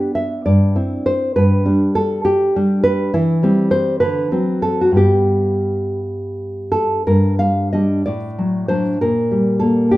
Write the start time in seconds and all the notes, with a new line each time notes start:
Already playing: B3 D4 G4
0.15 E5
0.46 G2 D5
0.76 C4 E4
1.06 C5
1.36 G2 B4
1.65 G3 D4
1.95 A4
2.25 G4
2.56 G3 D4
2.84 B4
3.14 E3 E4
3.43 G3 C4
3.71 C5
4.00 D3 B4
4.31 F#3 C4
4.62 A4
4.81 F#4
4.92 G2 G3
4.96 B3 G4
6.72 A4
7.07 G2 A#4
7.39 G3 F5
7.73 G3 D4 D#5
8.06 A2 D5
8.39 F#3
8.68 F#3 D4 C5
9.01 A#2 A#4
9.31 G3
9.60 A#3 A4
9.91 D4 G4